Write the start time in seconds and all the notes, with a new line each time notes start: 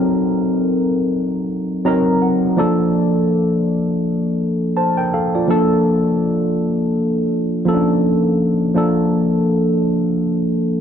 Already playing: F#3 C4 D#4 A4 A#4
1.85 F#3 C4 D#4 A#4 A#5
2.22 F#5
2.57 F3 A#3 D4 A4 D5
4.77 C5 A5
4.97 A#4 G5
5.14 A4 F5
5.35 F4 D5
5.48 F3 A#3 D4 A4
7.65 F3 A#3 C#4 A4
7.74 D4
8.75 F3 A#3 D4 A4